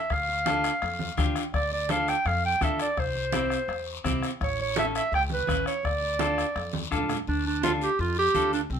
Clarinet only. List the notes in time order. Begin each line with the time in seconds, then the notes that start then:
Already playing: E5
0.12 F5
1.54 D5
1.73 D5
1.91 F5
2.09 G5
2.27 F5
2.46 G5
2.63 E5
2.82 D5
2.99 C5
4.43 C#5
4.62 C#5
4.79 E5
4.97 E5
5.15 G5
5.33 B4
5.68 C#5
5.85 D5
7.28 D4
7.47 D4
7.64 F4
7.83 G4
8.00 F4
8.18 G4
8.54 D4
8.72 C4